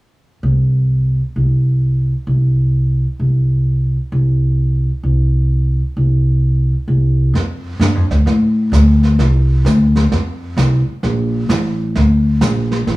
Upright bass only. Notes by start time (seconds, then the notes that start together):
0.43 C2
1.36 C2
2.27 C2
3.19 C2
4.12 C2
5.03 C2
5.97 C2
6.88 C2
7.34 F2
7.80 G2
7.95 F2
8.10 D2
8.26 A2
8.72 D2
9.19 C2
9.65 D2
10.12 F2
10.57 C2
10.88 muted upright bass stroke
11.03 A#1
11.49 A1
11.96 D2
12.41 A#1
12.87 A1